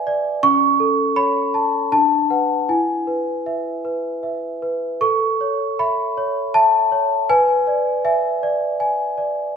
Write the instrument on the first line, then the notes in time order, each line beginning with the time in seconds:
celesta
Already playing: B4 D5 E5 G#5
0.07 D5
0.43 C#4 C#6
0.80 A4
1.16 C#5 B5
1.54 A5
1.92 D4 A5
2.30 B4 F#5
2.69 E4 G#5
3.07 B4
3.46 E5
3.85 B4
4.23 E5
4.62 B4
5.01 A4 C#6
5.41 C#5
5.79 E5 B5
6.17 C#5
6.54 E5 A5
6.92 C#5
7.30 B4 G#5
7.67 D5
8.05 E5 G#5
8.43 D5
8.80 G#5
9.18 D5